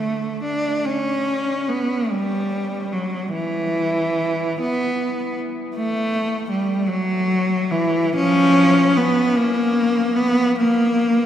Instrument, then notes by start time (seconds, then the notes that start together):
cello
Already playing: A3
0.43 D4
0.85 C#4
1.68 B3
2.10 G3
2.92 F#3
3.32 E3
4.62 B3
5.76 A3
6.51 G3
6.88 F#3
7.71 E3
8.15 F3 C#4
8.97 B3
9.35 A#3
10.16 B3
10.59 A#3